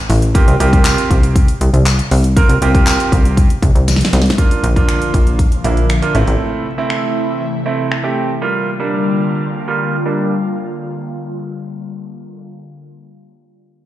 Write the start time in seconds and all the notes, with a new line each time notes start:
0.10 A1, open hi-hat
0.22 closed hi-hat
0.34 A#3 C4 F4 G4, kick, closed hi-hat
0.48 C2, closed hi-hat
0.60 C2 A#3 C4 F4 G4, closed hi-hat
0.72 A#3 C4 F4 G4, kick, closed hi-hat
0.85 clap, closed hi-hat, tambourine
0.98 closed hi-hat
1.11 C2, kick, closed hi-hat
1.23 closed hi-hat
1.36 kick, closed hi-hat
1.48 closed hi-hat
1.61 C2, closed hi-hat
1.73 C2, closed hi-hat
1.86 clap, closed hi-hat, tambourine
1.99 closed hi-hat
2.11 C2, open hi-hat
2.24 closed hi-hat
2.36 A#3 C4 F4 A#4, kick, closed hi-hat
2.49 C2, closed hi-hat
2.62 C2 A#3 C4 F4 G4, closed hi-hat
2.74 A#3 C4 F4 G4, kick, closed hi-hat
2.87 clap, closed hi-hat, tambourine
3.00 closed hi-hat
3.12 C2, kick, closed hi-hat
3.25 closed hi-hat
3.37 kick, closed hi-hat
3.50 closed hi-hat
3.63 C2, kick, closed hi-hat
3.75 C2, closed hi-hat
3.88 snare, closed hi-hat, tambourine
3.96 snare
4.01 snare, closed hi-hat
4.13 C2, snare, closed hi-hat
4.22 snare
4.26 closed hi-hat
4.30 snare
4.38 D3 F3 A#3 D4 F4, kick, closed hi-hat
4.51 closed hi-hat
4.63 A#1, closed hi-hat
4.76 A#3 D4 F4, kick, closed hi-hat
4.89 finger snap, closed hi-hat
5.02 closed hi-hat
5.14 A#1, kick, closed hi-hat
5.27 closed hi-hat
5.39 kick, closed hi-hat
5.52 closed hi-hat
5.64 A#1 A#3 D4 E4, closed hi-hat
5.77 closed hi-hat
5.90 finger snap, closed hi-hat
6.02 A#3 D4 F4, closed hi-hat
6.15 A1 C3 E3 A3 C4 E4, closed hi-hat
6.27 A1, closed hi-hat
6.78 A3 C4 E4
6.90 finger snap
7.66 A3 C4 E4
7.92 finger snap
8.03 A3 C4 G4
8.41 D3 G3 A#3 F4
8.79 G3 A#3 D4
9.68 G3 A#3 F4
10.05 G3 A#3 D4